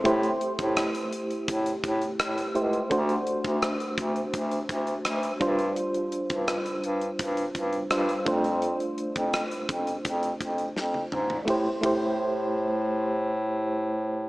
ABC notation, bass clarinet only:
X:1
M:4/4
L:1/16
Q:1/4=84
K:Am
V:1 name="Bass clarinet" clef=bass
A,,2 z A,,2 z3 A,,2 A,,2 A,,2 ^C,,2 | D,,2 z D,,2 z D,,2 D,,2 D,,2 D,,2 G,,2 | z3 G,,2 z G,,2 G,,2 G,,2 G,,2 F,,2- | F,,2 z F,,2 z F,,2 F,,2 F,,2 F,,2 ^G,,2 |
A,, z A,,12- A,,2 |]